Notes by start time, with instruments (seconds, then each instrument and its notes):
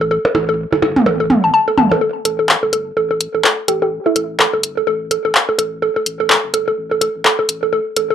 Already playing: sub bass A1
0.01 synth arpeggio sound A4
0.11 synth arpeggio sound A4
0.25 percussion blips
0.35 sub bass A1, synth arpeggio sound A4, closed hi-hat, percussion blips
0.49 synth arpeggio sound A4
0.73 sub bass G1, synth arpeggio sound A4, percussion blips
0.82 synth arpeggio sound A4, closed hi-hat, percussion blips
0.96 mid tom
1.06 sub bass A1, synth arpeggio sound A4, percussion blips
1.20 synth arpeggio sound A4
1.30 closed hi-hat, mid tom
1.44 sub bass A1, synth arpeggio sound A5
1.54 synth arpeggio sound A5
1.68 synth arpeggio sound A4
1.78 sub bass A1, synth arpeggio sound A5, closed hi-hat, mid tom
1.91 synth arpeggio sound A4, percussion blips
2.01 synth arpeggio sound A4
2.25 sub bass A1, synth arpeggio sound A4, closed hi-hat
2.39 synth arpeggio sound A4
2.49 clap
2.63 sub bass G1, synth arpeggio sound A4
2.73 synth arpeggio sound A4, closed hi-hat
2.97 sub bass A1, synth arpeggio sound A4
3.11 synth arpeggio sound A4
3.21 closed hi-hat
3.35 sub bass A1, synth arpeggio sound A4
3.44 synth arpeggio sound A4, clap
3.68 sub bass A1, synth pluck G4, synth arpeggio sound A4, closed hi-hat
3.82 synth pluck G4, synth arpeggio sound A4
4.06 synth pluck E4, synth arpeggio sound A4
4.16 sub bass A1, synth arpeggio sound A4, closed hi-hat
4.39 synth arpeggio sound A4, clap
4.53 sub bass G1, synth arpeggio sound A4
4.63 closed hi-hat
4.77 synth arpeggio sound A4
4.87 sub bass A1, synth arpeggio sound A4
5.11 synth arpeggio sound A4, closed hi-hat
5.25 sub bass A1, synth arpeggio sound A4
5.35 clap
5.49 synth arpeggio sound A4
5.58 sub bass A1, synth arpeggio sound A4, closed hi-hat
5.82 synth arpeggio sound A4
5.96 synth arpeggio sound A4
6.06 sub bass A1, closed hi-hat
6.20 synth arpeggio sound A4
6.30 synth arpeggio sound A4, clap
6.44 sub bass G1
6.54 synth arpeggio sound A4, closed hi-hat
6.68 synth arpeggio sound A4
6.78 sub bass A1
6.91 synth arpeggio sound A4
7.01 synth arpeggio sound A4, closed hi-hat
7.15 sub bass A1
7.25 synth arpeggio sound A4, clap
7.39 synth arpeggio sound A4
7.49 sub bass A1, closed hi-hat
7.63 synth arpeggio sound A4
7.73 synth arpeggio sound A4
7.96 sub bass A1, synth arpeggio sound A4, closed hi-hat
8.10 synth arpeggio sound A4